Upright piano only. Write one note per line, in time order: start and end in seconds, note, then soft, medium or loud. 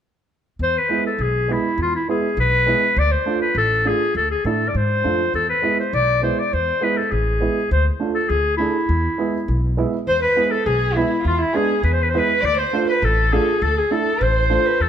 0.89 1.04 G#3 medium
0.89 1.05 B3 medium
0.89 1.05 E4 medium
1.48 1.63 G#3 medium
1.48 1.64 B3 soft
1.48 1.64 E4 medium
2.08 2.23 G#3 medium
2.08 2.23 B3 medium
2.08 2.24 E4 medium
2.66 2.82 G#3 medium
2.66 2.82 B3 medium
2.66 2.82 E4 medium
3.26 3.41 A3 medium
3.26 3.41 D4 medium
3.26 3.41 F4 medium
3.85 4.00 A3 medium
3.85 4.00 D4 medium
3.85 4.00 F4 medium
4.45 4.60 A3 medium
4.45 4.60 D4 soft
4.45 4.60 E4 medium
5.04 5.19 A3 medium
5.04 5.19 D4 soft
5.04 5.20 F4 medium
5.62 5.78 G#3 medium
5.62 5.78 B3 soft
5.62 5.78 E4 medium
6.22 6.37 G#3 medium
6.22 6.37 B3 soft
6.22 6.38 E4 medium
6.81 6.96 G#3 medium
6.81 6.96 B3 medium
6.81 6.97 E4 medium
7.40 7.55 G#3 medium
7.40 7.56 B3 medium
7.40 7.56 E4 medium
8.00 8.15 A3 medium
8.00 8.15 D4 medium
8.00 8.15 F4 medium
8.59 8.74 A3 medium
8.59 8.74 D4 medium
8.59 8.75 G#4 medium
9.18 9.33 G#3 medium
9.18 9.33 B3 medium
9.18 9.34 E4 medium
9.77 9.92 G#3 medium
9.77 9.92 B3 medium
9.77 9.93 E4 medium
10.36 10.51 G#3 medium
10.36 10.51 B3 medium
10.36 10.52 E4 medium
10.96 11.11 G#3 medium
10.96 11.11 B3 medium
10.96 11.11 E4 medium
11.54 11.69 G#3 medium
11.54 11.69 B3 medium
11.54 11.70 D4 medium
12.14 12.29 G#3 medium
12.14 12.29 B3 medium
12.14 12.29 E4 medium
12.73 12.88 A3 medium
12.73 12.88 D4 medium
12.73 12.88 F4 medium
13.33 13.47 A3 medium
13.33 13.47 D4 medium
13.33 13.47 F4 medium
13.91 14.06 A3 medium
13.91 14.06 D4 medium
13.91 14.06 E4 medium
14.50 14.65 A3 medium
14.50 14.65 D4 medium
14.50 14.65 F4 medium